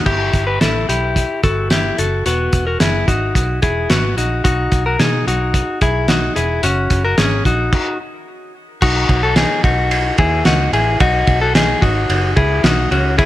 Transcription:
0.06 fingered electric bass G1, clean electric guitar E4 G4, kick, crash
0.33 fingered electric bass G1, kick, closed hi-hat
0.47 clean electric guitar G4 B4
0.61 fingered electric bass A1, clean electric guitar E4 A4, snare, closed hi-hat
0.89 fingered electric bass B1, clean electric guitar E4 G4, closed hi-hat
1.16 kick, closed hi-hat
1.43 fingered electric bass G1, clean electric guitar F#4 A4, kick, closed hi-hat
1.70 clean electric guitar E4 G4, snare, closed hi-hat
1.98 fingered electric bass F#1, clean electric guitar F#4 A4, closed hi-hat
2.26 fingered electric bass E1, clean electric guitar B3 F#4, closed hi-hat
2.53 fingered electric bass E1, kick, closed hi-hat
2.67 clean electric guitar F#4 A#4
2.80 fingered electric bass F#1, clean electric guitar E4 G#4, snare, closed hi-hat
3.08 fingered electric bass G#1, clean electric guitar D#4 F#4, kick, closed hi-hat
3.35 fingered electric bass B1, kick, closed hi-hat
3.62 fingered electric bass E1, clean electric guitar E4 G#4, kick, closed hi-hat
3.90 fingered electric bass G#1, clean electric guitar B3 F#4, snare, closed hi-hat
4.17 fingered electric bass A#1, clean electric guitar D#4 F#4, closed hi-hat
4.44 fingered electric bass B1, clean electric guitar D#4 F#4, kick, closed hi-hat
4.72 fingered electric bass B1, kick, closed hi-hat
4.86 clean electric guitar F#4 A#4
4.99 fingered electric bass B2, clean electric guitar D#4 G#4, snare, closed hi-hat
5.27 fingered electric bass B1, clean electric guitar D#4 F#4, closed hi-hat
5.54 kick, closed hi-hat
5.81 fingered electric bass B1, clean electric guitar E4 G#4, kick, closed hi-hat
6.08 clean electric guitar D#4 F#4, snare, closed hi-hat
6.36 fingered electric bass E1, clean electric guitar E4 G#4, closed hi-hat
6.63 fingered electric bass F#1, clean electric guitar C#4 F#4, closed hi-hat
6.90 fingered electric bass F#1, kick, closed hi-hat
7.05 clean electric guitar F#4 A#4
7.18 fingered electric bass G#1, clean electric guitar C#4 G#4, snare, closed hi-hat
7.45 fingered electric bass A#1, clean electric guitar D#4 F#4, kick, closed hi-hat
7.72 kick, crash
8.82 fingered electric bass B1, clean electric guitar D#4 F#4, kick, crash
9.09 fingered electric bass B1, kick, ride
9.23 clean electric guitar F#4 A4
9.36 clean electric guitar D#4 G#4, snare, ride
9.64 fingered electric bass B1, clean electric guitar D#4 F#4, kick, ride
9.91 ride
10.18 fingered electric bass D#2, clean electric guitar E4 G#4, kick, ride
10.45 fingered electric bass C#2, clean electric guitar D#4 F#4, snare, ride
10.73 fingered electric bass A1, clean electric guitar E4 G#4, ride
11.00 fingered electric bass B1, clean electric guitar D#4 F#4, kick, ride
11.27 fingered electric bass B1, kick, ride
11.41 clean electric guitar F#4 A4
11.55 clean electric guitar D#4 G#4, snare, ride
11.82 fingered electric bass G#1, clean electric guitar D#4 F#4, kick, ride
12.09 fingered electric bass F#1, ride
12.37 fingered electric bass C#2, clean electric guitar E4 G#4, kick, ride
12.64 fingered electric bass B1, clean electric guitar D#4 F#4, snare, ride
12.91 fingered electric bass C#2, clean electric guitar C#4 F#4, ride
13.18 clean electric guitar E4 G#4, kick, ride

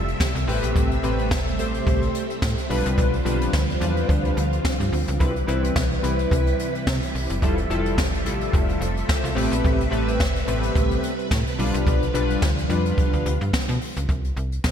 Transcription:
Already playing: fm bass F1, string machine C3 F3 G3 A3 E5
0.08 closed hi-hat
0.20 kick, snare
0.35 fm bass C2, closed hi-hat
0.47 fm bass A1, analog polysynth A3 C4 G4 B4, string machine A3 C4, open hi-hat
0.63 fm bass A#1, closed hi-hat
0.76 fm bass A1, kick, closed hi-hat
0.91 closed hi-hat
1.03 fm bass A1, analog polysynth A3 C4 G4 B4, closed hi-hat
1.19 closed hi-hat
1.31 fm bass G1, kick, snare
1.47 closed hi-hat
1.59 fm bass A1, analog polysynth A3 C4 G4 C5, closed hi-hat
1.74 closed hi-hat
1.87 fm bass A1, kick, closed hi-hat
2.02 closed hi-hat
2.15 closed hi-hat
2.30 closed hi-hat
2.42 fm bass A2, kick, snare
2.58 closed hi-hat
2.69 fm bass B1, string machine D3 F3 G3 F4, analog polysynth G3 D4 F4 B4, open hi-hat
2.85 fm bass C2, closed hi-hat
2.98 fm bass B1, kick, closed hi-hat
3.13 closed hi-hat
3.25 fm bass B1, analog polysynth G3 D4 F4 B4, closed hi-hat
3.41 closed hi-hat
3.53 fm bass D2, kick, snare
3.70 closed hi-hat
3.80 fm bass E2, analog polysynth G3 D4 F4 B4, closed hi-hat
3.97 closed hi-hat
4.09 fm bass D2, kick, closed hi-hat
4.25 closed hi-hat
4.37 fm bass D2, closed hi-hat
4.53 closed hi-hat
4.65 kick, snare
4.80 fm bass G2, closed hi-hat
4.92 fm bass D2, open hi-hat
5.08 fm bass C#2, closed hi-hat
5.19 fm bass C2, string machine C3 E3 G3 E4 B4, analog polysynth G3 C4 E4 B4, kick, closed hi-hat
5.36 closed hi-hat
5.47 fm bass C2, analog polysynth G3 C4 E4 B4, closed hi-hat
5.64 closed hi-hat
5.76 fm bass B1, kick, snare
5.92 closed hi-hat
6.03 fm bass C2, analog polysynth G3 C4 E4 B4, closed hi-hat
6.19 closed hi-hat
6.31 fm bass C2, kick, closed hi-hat
6.47 closed hi-hat
6.59 closed hi-hat
6.75 closed hi-hat
6.87 fm bass C3, kick, snare
7.03 closed hi-hat
7.15 fm bass C2, open hi-hat
7.30 fm bass F#1, closed hi-hat
7.42 fm bass F1, string machine F3 A3 E5, analog polysynth G3 E4 F4 A4, kick, closed hi-hat
7.58 closed hi-hat
7.70 fm bass F1, analog polysynth G3 E4 F4 A4, closed hi-hat
7.86 closed hi-hat
7.98 fm bass G1, kick, snare
8.14 closed hi-hat
8.25 fm bass A1, analog polysynth G3 E4 F4 A4, closed hi-hat
8.41 closed hi-hat
8.53 fm bass F1, kick, closed hi-hat
8.69 closed hi-hat
8.80 fm bass F1, analog polysynth F4 A4, closed hi-hat
8.97 closed hi-hat
9.08 analog polysynth A4 C5, kick, snare
9.24 fm bass C2, analog polysynth F4 A4, closed hi-hat
9.35 fm bass A1, string machine C3 B4, analog polysynth A3 C4 G4 B4, open hi-hat
9.52 fm bass A#1, closed hi-hat
9.64 fm bass A1, kick, closed hi-hat
9.80 closed hi-hat
9.90 fm bass A1, analog polysynth A3 C4 G4 B4, closed hi-hat
10.08 closed hi-hat
10.20 fm bass G1, kick, snare
10.36 closed hi-hat
10.47 fm bass A1, analog polysynth A3 C4 G4 B4, closed hi-hat
10.63 closed hi-hat
10.76 fm bass A1, kick, closed hi-hat
10.91 closed hi-hat
11.03 closed hi-hat
11.19 closed hi-hat
11.31 fm bass A2, kick, snare
11.47 closed hi-hat
11.58 fm bass B1, string machine D3 F3 F4, analog polysynth G3 D4 F4 B4, open hi-hat
11.74 fm bass C2, closed hi-hat
11.87 fm bass B1, kick, closed hi-hat
12.03 closed hi-hat
12.14 fm bass B1, analog polysynth G3 D4 F4 B4, closed hi-hat
12.30 closed hi-hat
12.42 fm bass D2, kick, snare
12.58 closed hi-hat
12.69 fm bass F2, analog polysynth G3 D4 F4 B4, closed hi-hat
12.86 closed hi-hat
12.98 kick, closed hi-hat
13.13 fm bass D2, closed hi-hat
13.26 fm bass D2, closed hi-hat
13.41 fm bass G2, closed hi-hat
13.53 kick, snare
13.69 fm bass B2, closed hi-hat
13.81 open hi-hat
13.96 fm bass C#2, closed hi-hat
14.09 fm bass C2, kick, closed hi-hat
14.24 closed hi-hat
14.37 fm bass C2, closed hi-hat
14.52 closed hi-hat
14.64 fm bass B1, kick, snare

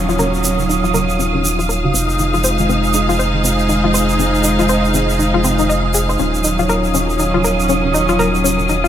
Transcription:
Already playing: analog synth bass D#1, analog synth pad F#3 D#4 F4 C#5, string section F#3 C#4 F5, string machine D#6, downlifter
0.09 synth arpeggio sound F4, shaker
0.19 synth stab C#4 F#4 F5, synth arpeggio sound A#4, shaker
0.34 shaker
0.44 synth arpeggio sound C#4, shaker
0.59 synth stab C#4 F#4 F5, shaker
0.69 synth arpeggio sound D#4, shaker
0.84 synth arpeggio sound F4, shaker
0.94 synth stab C#4 F#4 F5, synth arpeggio sound A#4, shaker
1.09 shaker
1.19 synth arpeggio sound C#4, shaker
1.34 synth stab C#4 F#4 F5
1.44 synth arpeggio sound D#4, shaker
1.59 synth arpeggio sound F4, shaker
1.69 synth arpeggio sound A#4, shaker
1.84 synth stab C#4 F#4 F5
1.94 analog synth bass F1, analog synth pad G#3 C5, synth arpeggio sound C4, string section D#4, shaker
2.08 string section G#4, shaker
2.19 synth stab D#4 G#4 F5, synth arpeggio sound D#4, shaker
2.34 synth arpeggio sound F4, shaker
2.44 synth arpeggio sound C5, shaker
2.59 synth stab D#4 G#4 F5, shaker
2.69 synth arpeggio sound C4, shaker
2.84 shaker
2.94 synth stab D#4 G#4 F5, synth arpeggio sound D#4, shaker
3.09 synth arpeggio sound F4, shaker
3.19 synth arpeggio sound C5, shaker
3.34 synth stab D#4 G#4 F5
3.44 synth arpeggio sound C4, shaker
3.59 shaker
3.69 synth arpeggio sound D#4, shaker
3.84 synth stab D#4 G#4 F5, synth arpeggio sound F4
3.94 synth arpeggio sound C5, shaker
4.09 shaker
4.19 synth arpeggio sound C4, synth stab D#4 G#4 F5, shaker
4.34 shaker
4.44 synth arpeggio sound D#4, shaker
4.59 synth stab D#4 G#4 F5, synth arpeggio sound F4, shaker
4.69 synth arpeggio sound C5, shaker
4.85 shaker
4.94 synth arpeggio sound C4, synth stab D#4 G#4 F5, shaker
5.10 shaker
5.19 synth arpeggio sound D#4, shaker
5.34 synth stab D#4 G#4 F5, synth arpeggio sound F4
5.44 synth arpeggio sound C4, shaker
5.59 synth arpeggio sound D#4, shaker
5.69 synth arpeggio sound D#5, shaker
5.84 synth stab D#4 G#4
5.94 synth arpeggio sound G#4, shaker
6.09 synth arpeggio sound C5, shaker
6.19 analog synth bass D#1, analog synth pad F#3 C#5, string section C#4, synth arpeggio sound C#4, synth stab F#4, string machine D#6, shaker
6.34 string section F#3, shaker
6.44 synth arpeggio sound D#4, shaker
6.59 synth stab C#4, synth arpeggio sound F4, shaker
6.69 synth arpeggio sound A#4, shaker
6.84 shaker
6.94 synth stab C#4 F#4, synth arpeggio sound C#4, shaker
7.10 shaker
7.19 synth arpeggio sound D#4, shaker
7.34 synth stab C#4 F#4 F5, synth arpeggio sound F4
7.44 synth arpeggio sound A#4, shaker
7.60 shaker
7.69 synth arpeggio sound C#4, shaker
7.84 synth stab C#4 F#4 F5
7.94 synth arpeggio sound D#4, shaker
8.09 synth arpeggio sound F4, shaker
8.19 synth stab C#4 F#4 F5, synth arpeggio sound A#4, shaker
8.35 shaker
8.44 synth arpeggio sound C#4, shaker
8.59 synth stab C#4 F#4 F5, shaker
8.69 synth arpeggio sound D#4, shaker
8.84 synth arpeggio sound F4, shaker

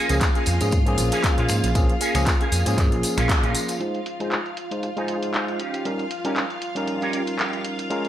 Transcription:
Already playing: clean electric guitar A#3 C#4 G#4, string machine F4 F5
0.09 picked electric bass C#2, tine electric piano F3 A#3 C#4 G#4, closed hi-hat, tambourine
0.21 kick, clap, closed hi-hat, tambourine
0.35 clean electric guitar A#3 C#4 G#4, closed hi-hat
0.46 picked electric bass F2, open hi-hat, tambourine
0.61 picked electric bass G#2, tine electric piano F3 A#3 C#4 G#4, closed hi-hat, tambourine
0.71 kick, closed hi-hat, tambourine
0.86 tine electric piano F3 A#3 C#4 G#4, closed hi-hat
0.98 picked electric bass A#1, open hi-hat, tambourine
1.12 clean electric guitar A#3 C#4 G#4, closed hi-hat, tambourine
1.23 kick, clap, closed hi-hat, tambourine
1.37 picked electric bass A#2, clean electric guitar A#3 C#4 F4, closed hi-hat
1.48 picked electric bass G#2, finger snap, open hi-hat, tambourine
1.63 picked electric bass A#1, closed hi-hat, tambourine
1.75 picked electric bass A#1, tine electric piano F3 A#3 C#4 G#4, kick, closed hi-hat, tambourine
1.89 closed hi-hat
2.00 clean electric guitar A#3 C#4 G#4, open hi-hat, tambourine
2.15 picked electric bass C#2, tine electric piano F3 A#3 C#4 G#4, finger snap, closed hi-hat, tambourine
2.26 kick, clap, closed hi-hat, tambourine
2.40 clean electric guitar A#3 C#4 G#4, closed hi-hat
2.52 picked electric bass F2, open hi-hat, tambourine
2.66 picked electric bass G#2, tine electric piano F3 A#3 C#4 G#4, closed hi-hat, tambourine
2.78 picked electric bass G2, kick, clap, closed hi-hat, tambourine
2.92 picked electric bass A#1, closed hi-hat
3.03 open hi-hat, tambourine
3.17 picked electric bass A#1, clean electric guitar A#3 C#4 F4, finger snap, closed hi-hat, tambourine
3.29 kick, clap, closed hi-hat, tambourine
3.43 picked electric bass A#1, clean electric guitar A#3 C#4 F4, closed hi-hat
3.55 open hi-hat, tambourine
3.68 closed hi-hat, tambourine
3.80 tine electric piano G#3 D#4 F4 C5, string machine F4 F5, muted clean electric guitar stroke, closed hi-hat
3.94 muted clean electric guitar stroke, closed hi-hat
4.06 closed hi-hat
4.19 tine electric piano G#3 D#4 F4 C5, clean electric guitar D#4 F4 G#4, closed hi-hat
4.31 clap, closed hi-hat
4.46 closed hi-hat
4.57 muted clean electric guitar stroke, closed hi-hat
4.71 tine electric piano G#3 D#4 F4 C5, closed hi-hat
4.82 muted clean electric guitar stroke, closed hi-hat
4.96 tine electric piano G#3 D#4 F4 C5, clean electric guitar D#4 F4 G#4, closed hi-hat
5.08 closed hi-hat
5.23 closed hi-hat
5.34 clean electric guitar D#4 F4 G#4, clap, closed hi-hat
5.48 closed hi-hat
5.60 clean electric guitar C#4 D#4 G4, closed hi-hat
5.74 closed hi-hat
5.85 tine electric piano G3 C#4 D#4 A#4, closed hi-hat
5.99 muted clean electric guitar stroke, closed hi-hat
6.11 closed hi-hat
6.25 tine electric piano G3 C#4 D#4 A#4, clean electric guitar C#4 D#4 G4, closed hi-hat
6.36 clap, closed hi-hat
6.50 closed hi-hat
6.62 muted clean electric guitar stroke, closed hi-hat
6.75 tine electric piano G3 C#4 D#4 A#4, closed hi-hat
6.87 muted clean electric guitar stroke, closed hi-hat
7.02 clean electric guitar C#4 D#4 G4, closed hi-hat
7.13 closed hi-hat
7.27 closed hi-hat
7.39 clean electric guitar C#4 D#4 G4, clap, closed hi-hat
7.53 closed hi-hat
7.64 closed hi-hat
7.79 closed hi-hat
7.90 tine electric piano G#3 C#4 F4 A#4, muted clean electric guitar stroke, closed hi-hat
8.04 muted clean electric guitar stroke, closed hi-hat

